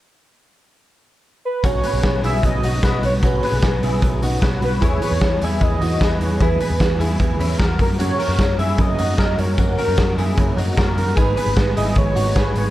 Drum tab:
HH |--------|xoxoxoxo|xoxoxoxo|xoxoxoxo|
SD |--------|--o---o-|--o---o-|--o---o-|
BD |--------|o-o-o-o-|o-o-o-o-|o-o-o-o-|

HH |xoxoxoxo|xoxoxoxo|xoxoxoxo|xoxoxoxo|
SD |--o---o-|--o---o-|--o---o-|--o---o-|
BD |o-o-o-oo|--o-o-o-|o-o-o-o-|o-o-o-o-|